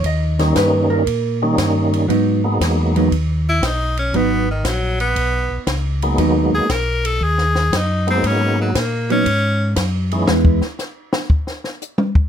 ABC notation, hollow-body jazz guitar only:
X:1
M:4/4
L:1/8
Q:"Swing" 1/4=117
K:G#m
V:1 name="Hollow-body jazz guitar"
d2 B A2 z3 | [F,B,D] z2 [F,B,D] z4 | [F,B,D] z6 z | [F,B,D] z6 z |
z3 [F,B,D] z4 | [G,B,E] z6 z |]